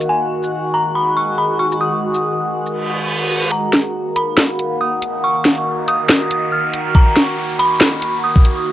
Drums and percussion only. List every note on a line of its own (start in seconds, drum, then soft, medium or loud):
0.00 shaker medium
0.43 shaker soft
1.72 shaker medium
2.15 shaker soft
2.66 shaker soft
3.31 shaker medium
3.43 shaker medium
3.73 snare medium
3.73 closed hi-hat medium
4.16 closed hi-hat medium
4.38 snare loud
4.59 closed hi-hat medium
5.02 closed hi-hat medium
5.45 snare medium
5.45 closed hi-hat medium
5.88 closed hi-hat medium
6.09 snare loud
6.31 closed hi-hat medium
6.74 closed hi-hat medium
6.95 kick loud
7.16 snare medium
7.16 closed hi-hat medium
7.59 closed hi-hat medium
7.81 snare loud
8.02 closed hi-hat medium
8.36 kick loud
8.45 closed hi-hat medium